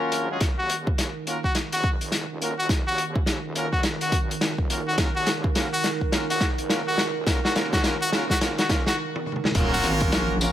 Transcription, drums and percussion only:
0.12 closed hi-hat medium
0.40 kick loud
0.40 snare soft
0.40 closed hi-hat medium
0.70 closed hi-hat medium
0.87 kick loud
0.98 snare soft
0.98 closed hi-hat medium
1.27 closed hi-hat medium
1.44 kick medium
1.55 snare soft
1.55 closed hi-hat medium
1.72 closed hi-hat medium
1.84 kick loud
2.01 closed hi-hat medium
2.12 snare medium
2.12 closed hi-hat medium
2.42 closed hi-hat medium
2.69 kick loud
2.69 snare medium
2.69 closed hi-hat medium
2.98 closed hi-hat medium
3.16 kick loud
3.26 snare medium
3.26 closed hi-hat medium
3.55 closed hi-hat medium
3.73 kick medium
3.83 snare medium
3.83 closed hi-hat medium
4.01 closed hi-hat medium
4.12 kick loud
4.12 closed hi-hat medium
4.31 closed hi-hat medium
4.41 snare medium
4.41 closed hi-hat medium
4.58 kick medium
4.70 closed hi-hat medium
4.98 kick loud
4.98 snare medium
4.98 closed hi-hat medium
5.26 snare medium
5.26 closed hi-hat medium
5.44 kick loud
5.55 snare medium
5.55 closed hi-hat medium
5.84 snare medium
5.84 closed hi-hat medium
6.01 kick medium
6.12 snare medium
6.12 closed hi-hat medium
6.30 closed hi-hat medium
6.41 kick loud
6.41 snare medium
6.41 closed hi-hat medium
6.58 closed hi-hat medium
6.70 snare medium
6.70 closed hi-hat medium
6.98 snare medium
6.98 closed hi-hat medium
7.27 kick loud
7.27 snare medium
7.27 closed hi-hat medium
7.45 snare medium
7.56 snare loud
7.56 closed hi-hat medium
7.73 kick loud
7.73 snare medium
7.73 closed hi-hat medium
7.76 snare medium
7.79 snare medium
7.82 snare soft
7.84 snare loud
7.84 closed hi-hat medium
8.12 snare medium
8.12 closed hi-hat medium
8.30 kick medium
8.30 snare medium
8.41 snare loud
8.41 closed hi-hat medium
8.58 snare medium
8.58 closed hi-hat medium
8.69 kick loud
8.69 snare loud
8.69 closed hi-hat medium
8.86 snare medium
8.86 closed hi-hat medium
9.16 high tom medium
9.26 mid tom soft
9.32 mid tom soft
9.36 mid tom soft
9.44 snare medium
9.44 mid tom soft
9.44 mid tom medium
9.51 closed hi-hat medium
9.51 mid tom medium
9.55 kick loud
9.55 crash loud
9.83 snare soft
9.83 closed hi-hat medium
10.00 kick loud
10.00 closed hi-hat medium
10.12 snare loud
10.12 closed hi-hat loud
10.41 closed hi-hat medium
10.41 tambourine medium

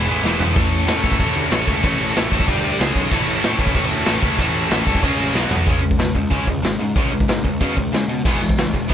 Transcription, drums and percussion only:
0.25 snare medium
0.40 floor tom loud
0.56 kick loud
0.56 crash medium
0.72 crash medium
0.88 snare loud
0.88 crash medium
1.04 kick loud
1.04 crash medium
1.12 kick medium
1.20 kick medium
1.20 crash medium
1.36 crash medium
1.51 snare loud
1.51 crash medium
1.67 kick medium
1.67 crash medium
1.84 kick loud
1.84 crash medium
2.00 crash medium
2.16 snare loud
2.16 crash medium
2.32 kick medium
2.32 crash medium
2.40 kick medium
2.48 kick medium
2.48 crash medium
2.65 crash medium
2.81 snare loud
2.81 crash medium
2.96 kick medium
2.96 crash medium
3.12 kick loud
3.12 crash medium
3.28 crash medium
3.44 snare loud
3.44 crash medium
3.59 kick medium
3.59 crash medium
3.67 kick medium
3.74 kick loud
3.74 crash medium
3.90 crash medium
4.06 snare loud
4.06 crash medium
4.22 kick loud
4.22 crash medium
4.38 kick medium
4.38 crash medium
4.55 crash medium
4.71 snare loud
4.71 crash medium
4.87 kick medium
4.87 crash medium
4.95 kick medium
5.03 kick medium
5.03 crash medium
5.19 crash medium
5.35 snare medium
5.51 floor tom loud
5.67 kick loud
5.67 open hi-hat medium
5.91 kick medium
5.99 snare loud
5.99 open hi-hat medium
6.15 kick medium
6.31 kick medium
6.31 open hi-hat soft
6.47 kick medium
6.64 snare loud
6.64 open hi-hat medium
6.96 kick loud
6.96 open hi-hat medium
7.20 kick medium
7.29 snare loud
7.29 open hi-hat medium
7.45 kick medium
7.61 kick loud
7.61 open hi-hat medium
7.77 kick medium
7.94 snare loud
7.94 open hi-hat medium
8.25 kick loud
8.25 crash loud
8.50 kick loud
8.58 snare loud
8.58 open hi-hat medium
8.74 kick medium
8.90 kick loud
8.90 open hi-hat medium

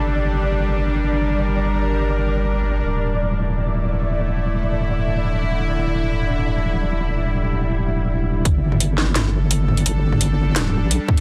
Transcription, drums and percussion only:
8.45 kick loud
8.45 closed hi-hat medium
8.72 mid tom medium
8.80 closed hi-hat medium
8.98 snare medium
9.16 snare loud
9.16 closed hi-hat medium
9.16 mid tom medium
9.51 closed hi-hat medium
9.68 mid tom medium
9.77 closed hi-hat soft
9.86 closed hi-hat medium
10.12 mid tom medium
10.21 closed hi-hat medium
10.56 snare loud
10.56 closed hi-hat medium
10.65 mid tom medium
10.91 closed hi-hat medium
11.08 kick loud
11.08 mid tom medium

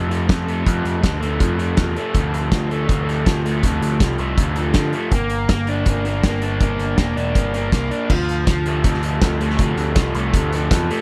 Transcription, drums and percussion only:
0.11 closed hi-hat medium
0.29 kick loud
0.29 snare loud
0.29 closed hi-hat medium
0.48 closed hi-hat medium
0.66 kick loud
0.66 closed hi-hat medium
0.85 closed hi-hat medium
1.04 kick loud
1.04 snare loud
1.04 closed hi-hat medium
1.23 closed hi-hat medium
1.40 kick loud
1.40 closed hi-hat medium
1.59 closed hi-hat medium
1.77 kick loud
1.77 snare loud
1.77 closed hi-hat medium
1.96 closed hi-hat medium
2.14 kick loud
2.14 closed hi-hat medium
2.34 closed hi-hat medium
2.52 kick loud
2.52 snare loud
2.52 closed hi-hat medium
2.71 closed hi-hat medium
2.89 kick loud
2.89 closed hi-hat medium
3.09 closed hi-hat medium
3.26 kick loud
3.26 snare medium
3.26 closed hi-hat medium
3.46 closed hi-hat medium
3.63 kick medium
3.63 closed hi-hat medium
3.82 closed hi-hat medium
4.00 kick loud
4.00 snare loud
4.00 closed hi-hat medium
4.18 closed hi-hat soft
4.38 kick loud
4.38 closed hi-hat medium
4.56 closed hi-hat medium
4.74 kick loud
4.74 snare loud
4.74 closed hi-hat medium
4.93 closed hi-hat medium
5.11 kick loud
5.11 closed hi-hat medium
5.30 closed hi-hat medium
5.49 kick loud
5.49 snare loud
5.49 closed hi-hat medium
5.67 closed hi-hat medium
5.86 kick loud
5.86 closed hi-hat medium
6.05 closed hi-hat medium
6.23 kick loud
6.23 snare loud
6.23 closed hi-hat medium
6.42 closed hi-hat medium
6.60 kick loud
6.60 closed hi-hat medium
6.79 closed hi-hat medium
6.98 kick loud
6.98 snare loud
6.98 closed hi-hat medium
7.17 closed hi-hat medium
7.35 kick loud
7.35 closed hi-hat medium
7.54 closed hi-hat medium
7.72 kick loud
7.72 snare loud
7.72 closed hi-hat medium
7.91 closed hi-hat medium
8.10 kick medium
8.10 crash loud
8.29 closed hi-hat medium
8.47 kick loud
8.47 snare loud
8.47 closed hi-hat medium
8.66 closed hi-hat medium
8.84 kick loud
8.84 closed hi-hat medium
8.94 snare soft
9.03 closed hi-hat medium
9.21 kick loud
9.21 snare loud
9.21 closed hi-hat medium
9.41 closed hi-hat medium
9.50 snare soft
9.59 kick loud
9.59 closed hi-hat medium
9.77 closed hi-hat medium
9.96 kick loud
9.96 snare loud
9.96 closed hi-hat medium
10.15 closed hi-hat medium
10.34 kick loud
10.34 closed hi-hat medium
10.53 closed hi-hat medium
10.71 kick loud
10.71 snare loud
10.71 closed hi-hat loud
10.91 closed hi-hat medium

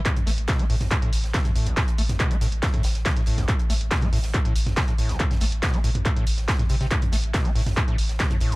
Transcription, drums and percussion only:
0.05 kick loud
0.05 clap loud
0.05 closed hi-hat loud
0.05 closed hi-hat medium
0.16 closed hi-hat soft
0.16 closed hi-hat medium
0.16 mid tom medium
0.27 snare medium
0.27 closed hi-hat medium
0.27 open hi-hat loud
0.38 closed hi-hat medium
0.48 kick loud
0.48 snare loud
0.48 clap loud
0.48 closed hi-hat medium
0.48 closed hi-hat loud
0.59 closed hi-hat medium
0.70 open hi-hat loud
0.70 open hi-hat medium
0.80 snare medium
0.80 closed hi-hat medium
0.80 mid tom medium
0.91 kick loud
0.91 clap loud
0.91 closed hi-hat medium
1.02 closed hi-hat medium
1.13 closed hi-hat medium
1.13 open hi-hat loud
1.24 snare medium
1.24 closed hi-hat medium
1.34 kick loud
1.34 snare loud
1.34 clap loud
1.34 closed hi-hat loud
1.34 closed hi-hat medium
1.45 closed hi-hat medium
1.45 closed hi-hat soft
1.45 mid tom medium
1.56 closed hi-hat medium
1.56 open hi-hat loud
1.66 closed hi-hat soft
1.66 closed hi-hat medium
1.77 kick loud
1.77 snare soft
1.77 clap loud
1.77 closed hi-hat medium
1.77 closed hi-hat loud
1.88 closed hi-hat medium
1.98 closed hi-hat soft
1.98 open hi-hat loud
2.09 snare soft
2.09 closed hi-hat medium
2.09 mid tom medium
2.20 kick loud
2.20 clap loud
2.20 closed hi-hat loud
2.20 closed hi-hat medium
2.31 closed hi-hat medium
2.31 closed hi-hat soft
2.41 snare medium
2.41 closed hi-hat medium
2.41 open hi-hat medium
2.52 closed hi-hat medium
2.62 kick loud
2.62 snare loud
2.62 clap loud
2.62 closed hi-hat medium
2.74 closed hi-hat medium
2.74 mid tom medium
2.83 snare loud
2.83 closed hi-hat medium
2.83 open hi-hat loud
2.95 snare soft
2.95 closed hi-hat medium
3.06 kick loud
3.06 snare loud
3.06 clap loud
3.06 closed hi-hat loud
3.06 closed hi-hat medium
3.17 closed hi-hat medium
3.26 closed hi-hat medium
3.26 open hi-hat loud
3.38 snare medium
3.38 closed hi-hat medium
3.38 mid tom medium
3.48 kick loud
3.48 clap loud
3.48 closed hi-hat loud
3.48 closed hi-hat medium
3.59 closed hi-hat soft
3.59 closed hi-hat medium
3.69 snare medium
3.69 closed hi-hat medium
3.69 open hi-hat loud
3.81 closed hi-hat medium
3.91 kick loud
3.91 snare loud
3.91 clap loud
3.91 closed hi-hat medium
3.91 closed hi-hat loud
4.02 closed hi-hat medium
4.02 mid tom medium
4.13 open hi-hat medium
4.23 snare medium
4.23 closed hi-hat medium
4.34 kick loud
4.34 clap loud
4.34 closed hi-hat medium
4.34 closed hi-hat loud
4.45 closed hi-hat medium
4.56 closed hi-hat medium
4.56 open hi-hat loud
4.67 snare soft
4.67 closed hi-hat medium
4.67 mid tom medium
4.76 kick loud
4.76 snare loud
4.76 clap loud
4.76 closed hi-hat medium
4.88 closed hi-hat soft
4.88 closed hi-hat medium
4.98 closed hi-hat medium
4.98 open hi-hat loud
5.09 snare medium
5.09 closed hi-hat medium
5.19 kick loud
5.19 clap loud
5.19 closed hi-hat medium
5.31 snare medium
5.31 closed hi-hat soft
5.31 mid tom medium
5.41 snare medium
5.41 closed hi-hat medium
5.41 open hi-hat loud
5.52 closed hi-hat medium
5.63 kick loud
5.63 snare loud
5.63 clap loud
5.63 closed hi-hat medium
5.74 closed hi-hat medium
5.84 closed hi-hat medium
5.84 open hi-hat loud
5.95 closed hi-hat medium
5.95 mid tom medium
6.05 kick loud
6.05 clap loud
6.05 closed hi-hat medium
6.16 closed hi-hat medium
6.27 closed hi-hat medium
6.27 open hi-hat loud
6.38 snare soft
6.38 closed hi-hat medium
6.48 kick loud
6.48 snare loud
6.48 clap loud
6.48 closed hi-hat medium
6.59 closed hi-hat medium
6.59 mid tom loud
6.69 closed hi-hat medium
6.69 open hi-hat medium
6.81 snare soft
6.81 closed hi-hat medium
6.91 kick loud
6.91 clap loud
6.91 closed hi-hat medium
7.02 closed hi-hat soft
7.02 closed hi-hat medium
7.02 mid tom loud
7.12 snare medium
7.12 closed hi-hat medium
7.12 open hi-hat loud
7.24 closed hi-hat medium
7.34 kick loud
7.34 snare loud
7.34 clap loud
7.34 closed hi-hat medium
7.45 closed hi-hat medium
7.56 open hi-hat medium
7.66 snare medium
7.66 closed hi-hat medium
7.66 mid tom loud
7.77 kick loud
7.77 clap loud
7.77 closed hi-hat medium
7.88 closed hi-hat medium
7.98 closed hi-hat medium
7.98 open hi-hat loud
8.09 snare soft
8.09 closed hi-hat medium
8.19 kick loud
8.19 snare loud
8.19 clap loud
8.19 closed hi-hat medium
8.31 closed hi-hat soft
8.31 closed hi-hat medium
8.31 mid tom loud
8.40 closed hi-hat medium
8.40 open hi-hat medium
8.52 closed hi-hat soft
8.52 closed hi-hat medium

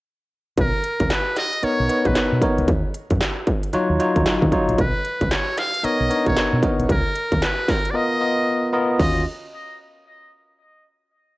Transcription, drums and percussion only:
0.58 kick loud
0.58 closed hi-hat medium
0.84 closed hi-hat medium
1.00 kick medium
1.00 closed hi-hat medium
1.10 snare loud
1.10 clap medium
1.10 closed hi-hat medium
1.36 snare medium
1.36 closed hi-hat medium
1.53 closed hi-hat medium
1.63 closed hi-hat medium
1.89 closed hi-hat medium
2.05 kick medium
2.05 closed hi-hat soft
2.15 snare loud
2.15 clap medium
2.15 closed hi-hat medium
2.42 kick medium
2.42 closed hi-hat medium
2.58 closed hi-hat soft
2.68 kick loud
2.68 closed hi-hat medium
2.94 closed hi-hat medium
3.10 kick medium
3.10 closed hi-hat soft
3.21 snare loud
3.21 clap loud
3.21 closed hi-hat medium
3.47 kick loud
3.47 closed hi-hat medium
3.63 closed hi-hat medium
3.73 closed hi-hat medium
4.00 closed hi-hat medium
4.16 kick medium
4.16 closed hi-hat medium
4.26 snare loud
4.26 clap medium
4.26 closed hi-hat medium
4.42 kick loud
4.52 kick loud
4.52 closed hi-hat medium
4.69 closed hi-hat soft
4.78 kick loud
4.78 closed hi-hat medium
5.05 closed hi-hat medium
5.21 kick medium
5.21 closed hi-hat soft
5.31 snare loud
5.31 clap medium
5.31 closed hi-hat medium
5.57 snare medium
5.57 closed hi-hat medium
5.74 closed hi-hat medium
5.84 closed hi-hat medium
6.11 closed hi-hat medium
6.26 kick medium
6.26 closed hi-hat medium
6.37 snare loud
6.37 clap medium
6.37 closed hi-hat medium
6.63 kick loud
6.63 closed hi-hat medium
6.80 closed hi-hat soft
6.89 kick loud
6.89 closed hi-hat medium
7.15 closed hi-hat medium
7.32 kick medium
7.32 closed hi-hat medium
7.42 snare loud
7.42 clap medium
7.42 closed hi-hat medium
7.68 kick loud
7.68 snare medium
7.68 open hi-hat medium
7.85 closed hi-hat medium
8.99 kick loud
8.99 crash medium

